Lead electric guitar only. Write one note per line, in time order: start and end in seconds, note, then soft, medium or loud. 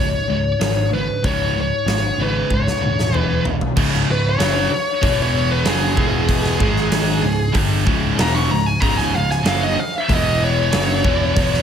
0.00 0.88 C#5 loud
0.94 1.22 B4 medium
1.25 1.57 C#5 medium
1.61 2.23 C#5 loud
2.22 2.53 B4 medium
2.54 3.17 C#5 medium
3.17 3.43 B4 medium
4.11 4.25 B4 loud
4.29 5.19 C#5 loud
5.22 5.51 C#5 loud
5.51 5.66 B4 loud
5.67 7.52 G#4 loud
8.21 8.35 A#5 loud
8.36 8.51 C#6 medium
8.51 8.66 A#5 loud
8.66 8.80 G#5 medium
8.80 8.97 A#5 loud
8.98 9.13 G#5 medium
9.16 9.30 F5 loud
9.32 9.48 G#5 medium
9.48 9.63 F5 loud
9.63 9.80 D#5 loud
9.80 9.94 F5 loud
9.98 10.11 E5 loud
10.15 10.43 D#5 medium
10.44 11.62 C#5 loud